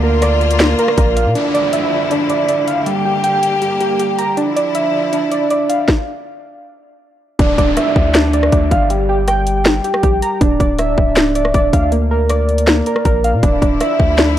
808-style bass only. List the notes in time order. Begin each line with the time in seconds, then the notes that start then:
Already playing: D2
0.98 A#1
1.26 A#2
7.39 D1
7.58 D1
7.96 D2
8.52 D2
8.71 G1
10.03 A#1
10.41 D1
10.60 D1
10.98 C#1
11.54 D1
11.73 D2
13.05 A#1
13.34 A#2
13.43 D1
13.62 D1
14.00 D2